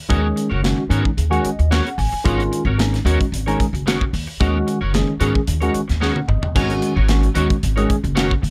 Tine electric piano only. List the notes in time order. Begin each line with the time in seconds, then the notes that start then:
0.09 D#3 G#3 C#4 G#4
0.63 D#3 G#3 C#4 F#4
0.89 D#3 G#3 C#4 D#4
1.16 C#4 G#4
1.30 D#3 G#3 C#4 F#4
1.43 D#5
1.58 C#4 F#4
1.70 D#3 G#3 C#4 F#4 F#5
1.85 C#4 G#4
1.98 G#5
2.24 D#3 G#3 C#4 F4
2.78 D#3 G#3 C#4 D#4
3.05 D#3 G#3 C#4 F#4
3.33 F#4
3.47 D#3 G#3 C#4 D#4
3.74 C#4 F#4
3.86 D#3 G#3 C#4 F#4
4.40 D#3 G#3 C#4 F#4
4.93 D#3 G#3 C#4 G#4
5.20 D#3 G#3 C#4 G#4
5.48 C#4 F4
5.62 D#3 G#3 C#4 F#4
5.89 C#4 F#4
6.02 D#3 G#3 C#4 G#4 F#5
6.15 C#4 D#4
6.28 D#5
6.55 D#3 G#3 C#4 F#4
7.08 D#3 G#3 C#4 F#4
7.35 D#3 G#3 C#4 F#4
7.63 C#4 F#4
7.77 D#3 G#3 C#4 G#4
8.04 C#4 F#4
8.16 D#3 G#3 C#4 F#4